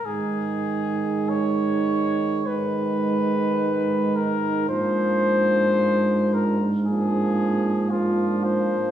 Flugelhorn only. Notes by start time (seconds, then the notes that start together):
0.05 G#4
1.29 C#5
2.46 B4
4.16 A#4
4.69 C5
6.34 A#4
6.86 G#4
7.91 F4
8.43 C5